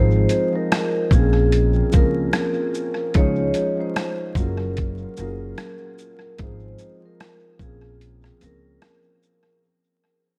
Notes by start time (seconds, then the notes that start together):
Already playing: G#1 F3 G#3 C4 D#4 G#4 C5
0.29 closed hi-hat, shaker
0.56 A#4
0.72 cross-stick, closed hi-hat
1.11 A#1 F3 A#3 C4 G#4, kick, shaker
1.15 C#4 G#4
1.52 closed hi-hat
1.92 C#2 F3 A#3 C4 C#4, kick, shaker
1.96 G#4 A#4
2.33 cross-stick, closed hi-hat
2.74 shaker
3.14 C#2 F3 G#3 C#4 D#4 C#5, kick, closed hi-hat
3.19 G#4
3.54 closed hi-hat, shaker
3.81 C5
3.96 cross-stick, closed hi-hat
4.35 F#1 F#3 A#3 C#4 A#4, kick, shaker
4.40 F4 G#4
4.77 kick, closed hi-hat
5.17 F#1 F#3 A#3 C#4 F4 A#4, shaker
5.22 G#4
5.58 cross-stick, closed hi-hat
5.98 shaker
6.38 G#1 F3 G#3 C4 D#4 C5, kick, closed hi-hat
6.44 G#4
6.78 shaker
7.05 A#4
7.20 cross-stick, closed hi-hat
7.59 A#1 F3 A#3 C4 C#4 G#4, kick, shaker
7.64 G#4
8.01 closed hi-hat
8.24 cross-stick
8.40 C#2 F3 A#3 C4 C#4, closed hi-hat, shaker
8.44 G#4 A#4
8.82 cross-stick, closed hi-hat
9.23 shaker